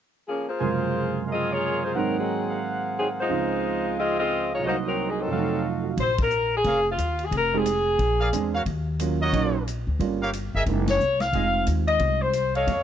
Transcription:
0.28 saxophone section F3 A#3 C#4 G#4
0.49 saxophone section A#3 F4 G#4 C5
0.59 grand piano F#2 C3 C#3 F3 G#3 A#3, trumpet section G#4 A#4 F5 G#5 C6
1.27 trumpet section A#4 D#5 F5
1.32 saxophone section C4 F4 G#4 D#5
1.52 saxophone section A#3 F4 G#4 C#5
1.84 saxophone section A#3 F4 G#4 C5
1.94 grand piano G#2 D#3 F#3 A#3 C4, saxophone section C4 D#4 A#4, trumpet section G#4 A#4 C5 F#5
1.98 saxophone section F#3
2.19 saxophone section F#3 C4 D#4 G#4
2.49 trumpet section A#4 F5
2.98 saxophone section F#3 C4 D#4 G#4
3.20 saxophone section G#3 D#4 F4 C5
3.29 grand piano C#2 C#3 F3 C4 D#4, trumpet section F4 C5 D#5 F5
3.99 saxophone section C4 F4 G#4 D#5
4.19 saxophone section C4 F4 G#4 D#5
4.53 saxophone section G#3 D#4 F4 C#5
4.59 grand piano C2 C3, trumpet section C5
4.63 grand piano F#3, saxophone section A#3 D#4 F#4 C5, trumpet section F#4 A#4 D#5
4.67 grand piano A#3 D#4
4.87 saxophone section F#3 C4 D#4 A#4
5.10 saxophone section G#4
5.21 saxophone section F#3 C4 D#4 A4
5.27 grand piano F2 C3, trumpet section F#4 D#5 F5
5.32 grand piano F#3 A3, trumpet section A4
5.38 grand piano D#4
5.67 grand piano F4
5.84 grand piano F#4
5.97 upright bass A#1, saxophone section C5, kick, ride
6.18 kick, ride
6.23 saxophone section A#4
6.30 hi-hat pedal
6.57 saxophone section G#4
6.64 upright bass F1, trumpet section G#4 A#4 C#5 F5, kick, ride
6.92 saxophone section F4
6.98 upright bass D#2, hi-hat pedal, ride
7.19 ride
7.25 saxophone section G#4
7.31 upright bass F1, kick, ride
7.38 saxophone section A#4
7.54 grand piano G#3 C4 D#4 G4
7.58 saxophone section G#4
7.66 hi-hat pedal, ride
7.99 upright bass A#1, kick, ride
8.20 trumpet section G#4 A#4 D5 F5
8.33 upright bass E2, grand piano G#3 C4 D4 G#4, hi-hat pedal, ride
8.54 trumpet section F#4 A#4 C#5 F5
8.66 upright bass D#2, kick, ride
8.99 grand piano F#3 A#3 C#4 F4, hi-hat pedal, ride
9.21 trumpet section F#4 A#4 C#5 D#5
9.33 upright bass A#1, grand piano F#3 A#3 C#4 D#4, kick, ride
9.67 hi-hat pedal, ride
9.87 upright bass D2
9.99 upright bass G1, grand piano G3 A#3 C#4 F4, kick, ride
10.22 trumpet section G4 A#4 C#5 F5
10.33 hi-hat pedal, ride
10.54 upright bass G1, trumpet section G#4 A#4 D#5 E5
10.66 upright bass F#1, grand piano G#3 A#3 D#4 E4, kick, ride
10.88 saxophone section C#5, snare, ride
11.00 upright bass C2, hi-hat pedal
11.20 saxophone section F5, snare, ride
11.33 upright bass F1, grand piano G#3 C4 D#4 F4, trumpet section G#4 C5 D#5 F5, kick, ride
11.66 upright bass D#2, hi-hat pedal, ride
11.88 saxophone section D#5, ride
11.99 upright bass C2, kick, ride
12.22 saxophone section C5
12.33 hi-hat pedal, ride
12.55 trumpet section A4 C#5 D#5 F5, saxophone section C#5, ride
12.67 upright bass F2, kick, ride

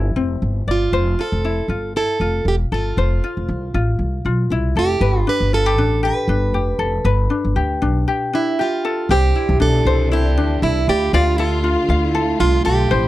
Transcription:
Already playing: upright bass G1, ukulele C4 E4 G4 D5, steel-string acoustic guitar G4
0.16 upright bass F1, ukulele C4
0.42 upright bass G1
0.67 upright bass G1, steel-string acoustic guitar F4, ukulele D5
0.92 upright bass F1, ukulele C5
1.19 ukulele F4, steel-string acoustic guitar A4
1.32 upright bass F1
1.45 ukulele E4
1.68 upright bass G1, ukulele F4
1.96 ukulele E4, steel-string acoustic guitar A4
2.20 upright bass F1, ukulele F4
2.45 upright bass E1, steel-string acoustic guitar G4
2.72 upright bass G1, steel-string acoustic guitar F4, ukulele A4
2.97 upright bass F1, ukulele C5
3.24 ukulele F4
3.37 upright bass F1
3.48 upright bass C2
3.74 upright bass A1, ukulele F4
3.99 upright bass C2
4.25 upright bass B1, ukulele F4
4.50 upright bass C2, ukulele E4
4.76 upright bass F1, steel-string acoustic guitar G4, ukulele A4
5.01 upright bass G1, ukulele B4
5.27 ukulele D4, steel-string acoustic guitar B4
5.40 upright bass G1
5.53 ukulele F4, steel-string acoustic guitar A4
5.66 ukulele G4
5.77 upright bass A1, ukulele D4
6.03 ukulele G4, steel-string acoustic guitar B4
6.28 upright bass G1, ukulele D4
6.53 upright bass F1, ukulele G4
6.79 upright bass F1, ukulele A4
7.05 upright bass G1, ukulele B4
7.30 ukulele D4
7.45 upright bass G1
7.56 upright bass D2, ukulele G4
7.82 upright bass B1, ukulele D4
8.08 ukulele G4
8.33 ukulele D4, steel-string acoustic guitar E4
8.59 steel-string acoustic guitar F4, ukulele G4
8.85 ukulele A4
9.09 upright bass C2, string section E3 C4 D4, ukulele G4 C5, steel-string acoustic guitar G4
9.36 ukulele E4
9.49 upright bass C2
9.60 upright bass B1, ukulele D4, steel-string acoustic guitar A4
9.85 upright bass C2, ukulele C5
10.12 ukulele E4, steel-string acoustic guitar G4
10.37 upright bass D2, ukulele D4
10.62 upright bass C2, ukulele E4, steel-string acoustic guitar E4
10.87 upright bass D2, string section D3 A3 F4, steel-string acoustic guitar G4, ukulele D5
11.13 upright bass D2, steel-string acoustic guitar F4, ukulele D5 F5
11.38 steel-string acoustic guitar F4, ukulele A4
11.64 ukulele F4
11.89 upright bass D2, ukulele F5
12.03 steel-string acoustic guitar E4
12.15 ukulele A4
12.40 upright bass C2, ukulele F4, steel-string acoustic guitar F4
12.65 upright bass B1, steel-string acoustic guitar G4, ukulele A4
12.91 upright bass A1, string section C4 E4, ukulele C5

